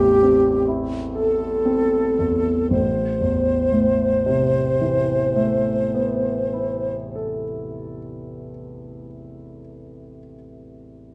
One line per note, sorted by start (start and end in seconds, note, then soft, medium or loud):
0.00 2.67 A1 soft
0.00 2.19 E2 soft
0.00 0.23 C4 soft
0.00 0.68 E4 soft
0.00 0.73 G4 medium
0.00 1.15 A4 soft
0.23 0.96 C4 soft
0.68 1.45 E4 soft
1.15 1.97 A4 soft
1.15 2.68 A4 soft
1.65 2.50 C4 soft
2.19 2.71 E2 soft
2.70 6.94 A1 soft
2.70 6.95 C5 soft
3.20 7.44 E2 soft
3.72 7.96 A2 soft
4.26 8.50 C3 soft
4.81 9.05 E3 soft
5.36 9.60 A3 soft
5.94 10.18 B3 soft
6.53 10.35 E4 soft
7.15 10.35 A4 soft